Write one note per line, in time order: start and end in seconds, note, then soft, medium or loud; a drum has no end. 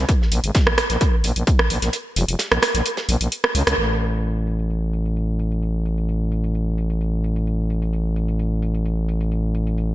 0.09 kick loud
0.09 closed hi-hat medium
0.22 snare soft
0.32 0.40 A#1 loud
0.32 closed hi-hat medium
0.32 open hi-hat loud
0.44 0.51 G#1 medium
0.44 closed hi-hat medium
0.55 kick loud
0.55 snare loud
0.55 closed hi-hat medium
0.67 0.74 A#1 medium
0.67 cross-stick medium
0.78 cross-stick loud
0.78 closed hi-hat medium
0.78 open hi-hat medium
0.90 0.97 A#1 medium
0.90 snare soft
0.90 closed hi-hat medium
1.01 kick loud
1.01 closed hi-hat medium
1.24 1.32 A#1 medium
1.24 closed hi-hat medium
1.24 open hi-hat loud
1.36 1.43 A#1 medium
1.36 closed hi-hat medium
1.47 kick loud
1.47 closed hi-hat medium
1.59 cross-stick medium
1.70 1.78 A#1 medium
1.70 closed hi-hat medium
1.70 open hi-hat medium
1.82 1.89 A#1 medium
1.82 snare medium
1.82 closed hi-hat medium
1.93 closed hi-hat medium
2.16 2.24 F1 loud
2.16 closed hi-hat medium
2.16 open hi-hat loud
2.28 2.36 F1 medium
2.28 closed hi-hat medium
2.39 snare loud
2.39 closed hi-hat medium
2.52 2.59 A#1 medium
2.52 cross-stick medium
2.52 closed hi-hat soft
2.62 cross-stick medium
2.62 snare loud
2.62 closed hi-hat medium
2.62 open hi-hat medium
2.75 2.82 A#1 medium
2.75 snare soft
2.75 closed hi-hat medium
2.85 closed hi-hat medium
2.97 snare medium
2.97 closed hi-hat medium
3.09 3.17 A#1 loud
3.09 closed hi-hat medium
3.09 open hi-hat loud
3.21 3.28 A#1 medium
3.21 closed hi-hat medium
3.32 closed hi-hat medium
3.44 cross-stick medium
3.55 3.63 C#2 medium
3.55 closed hi-hat medium
3.55 open hi-hat medium
3.67 3.74 C#2 medium
3.67 cross-stick medium
3.67 snare soft
3.67 closed hi-hat medium
3.78 9.95 A1 medium
3.78 closed hi-hat medium
4.01 closed hi-hat medium
4.13 closed hi-hat medium
4.24 closed hi-hat medium
4.47 closed hi-hat loud
4.59 closed hi-hat medium
4.70 closed hi-hat medium
4.93 closed hi-hat medium
5.05 closed hi-hat medium
5.16 closed hi-hat medium
5.39 closed hi-hat medium
5.52 closed hi-hat medium
5.63 closed hi-hat medium
5.86 closed hi-hat medium
5.98 closed hi-hat medium
6.09 closed hi-hat medium
6.32 closed hi-hat medium
6.44 closed hi-hat medium
6.55 closed hi-hat medium
6.78 closed hi-hat medium
6.90 closed hi-hat medium
7.01 closed hi-hat medium
7.24 closed hi-hat medium
7.36 closed hi-hat medium
7.47 closed hi-hat medium
7.70 closed hi-hat medium
7.82 closed hi-hat medium
7.93 closed hi-hat medium
8.16 closed hi-hat medium
8.28 closed hi-hat medium
8.39 closed hi-hat medium
8.62 closed hi-hat medium
8.75 closed hi-hat medium
8.86 closed hi-hat medium
9.09 closed hi-hat medium
9.21 closed hi-hat medium
9.32 closed hi-hat medium
9.55 closed hi-hat medium
9.67 closed hi-hat medium
9.78 closed hi-hat medium